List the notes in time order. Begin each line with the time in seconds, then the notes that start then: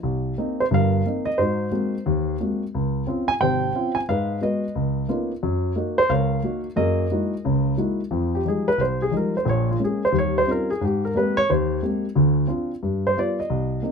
0.03 C2
0.38 A#3 C4 D#4
0.60 C5
0.71 G1 G2 F5
0.76 A#4
1.06 A#3 C4 D#4
1.25 D#5
1.38 G#2 D#4 F#4 C5
1.72 G#3 A#3 C4 F#4
2.06 D#2
2.40 G#3 A#3 C4 F#4
2.75 C#2
3.07 C4 C#4 F4
3.28 G#5
3.40 G#1 C3 C5 G5
3.75 C4 C#4 F4
3.95 G#5
4.09 G#2 G#3 B4 F5
4.41 G#3 B3 F#4 B4 D#5
4.75 C#2
5.09 A#3 B3 C#4 D#4 F4
5.43 F#2
5.76 A#3 D#4 F#4
5.98 C5
6.09 C#2 A#4 C#5 F5
6.43 A#3 D#4 F#4
6.76 F#2 A#3 G#4 A#4 D#5
7.11 G#3 A#3 D#4 E4 F#4
7.45 C#2 C#3
7.77 G#3 A#3 D#4 E4 F#4
8.11 F2 F3
8.35 G4
8.45 F3 G3 G#3 D#4 G#4
8.68 B4
8.78 C2 C5
9.02 G#4
9.11 F3 G3 G#3 D#4
9.17 A#4
9.37 C5
9.45 A#1 A#2
9.49 C#5
9.71 F4
9.79 G#3 A#3 C#4
9.84 G#4
10.05 C5
10.12 D#2 G3
10.19 C#5
10.38 C5
10.46 G3 C4 C#4 D#4 F4
10.51 A#4
10.70 G#4
10.81 G#2 G4
11.05 A#4
11.15 G#3 A#3 C4 G4 B4
11.37 C#5
11.50 D#2 C5
11.83 G#3 A#3 C4 G4
12.15 D2 D3
12.47 C4 D4 F4
12.83 G2
13.07 C5
13.17 G3 B3 F4 D5
13.40 D#5
13.50 C2
13.82 A#3 C4 D#4